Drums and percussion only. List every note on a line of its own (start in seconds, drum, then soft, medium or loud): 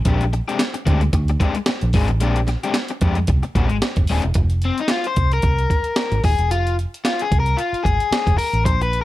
0.05 kick loud
0.05 closed hi-hat medium
0.21 closed hi-hat soft
0.33 closed hi-hat medium
0.49 closed hi-hat medium
0.59 snare loud
0.59 closed hi-hat loud
0.74 closed hi-hat medium
0.87 kick loud
0.87 closed hi-hat medium
1.01 closed hi-hat soft
1.13 kick loud
1.13 closed hi-hat medium
1.28 closed hi-hat soft
1.40 kick medium
1.40 closed hi-hat medium
1.55 closed hi-hat medium
1.66 snare loud
1.66 closed hi-hat medium
1.81 closed hi-hat soft
1.93 kick medium
1.93 open hi-hat medium
2.08 closed hi-hat soft
2.20 closed hi-hat loud
2.36 closed hi-hat medium
2.47 snare soft
2.47 closed hi-hat medium
2.63 closed hi-hat medium
2.74 snare loud
2.74 closed hi-hat loud
2.88 closed hi-hat medium
3.01 kick loud
3.01 closed hi-hat medium
3.15 closed hi-hat medium
3.27 kick loud
3.27 closed hi-hat medium
3.43 closed hi-hat soft
3.55 kick medium
3.55 closed hi-hat medium
3.70 closed hi-hat soft
3.82 snare loud
3.82 closed hi-hat medium
3.96 kick loud
3.96 closed hi-hat soft
4.07 open hi-hat medium
4.22 closed hi-hat soft
4.34 kick loud
4.34 closed hi-hat loud
4.50 closed hi-hat medium
4.62 closed hi-hat medium
4.78 closed hi-hat medium
4.88 snare loud
4.88 closed hi-hat loud
5.04 closed hi-hat medium
5.16 kick medium
5.16 closed hi-hat medium
5.32 closed hi-hat soft
5.42 kick loud
5.42 closed hi-hat medium
5.59 closed hi-hat soft
5.70 kick medium
5.70 closed hi-hat medium
5.84 closed hi-hat medium
5.96 snare loud
5.96 closed hi-hat medium
6.12 closed hi-hat soft
6.24 kick loud
6.24 open hi-hat medium
6.39 closed hi-hat soft
6.51 closed hi-hat loud
6.67 closed hi-hat medium
6.79 closed hi-hat medium
6.94 closed hi-hat medium
7.05 snare loud
7.05 closed hi-hat loud
7.19 closed hi-hat medium
7.32 kick medium
7.32 closed hi-hat medium
7.46 closed hi-hat medium
7.58 closed hi-hat medium
7.74 closed hi-hat soft
7.85 kick medium
7.85 closed hi-hat medium
8.00 closed hi-hat medium
8.12 snare loud
8.12 closed hi-hat medium
8.27 kick medium
8.27 closed hi-hat soft
8.38 open hi-hat medium
8.54 closed hi-hat soft
8.66 kick loud
8.66 closed hi-hat loud
8.81 closed hi-hat medium
8.93 closed hi-hat medium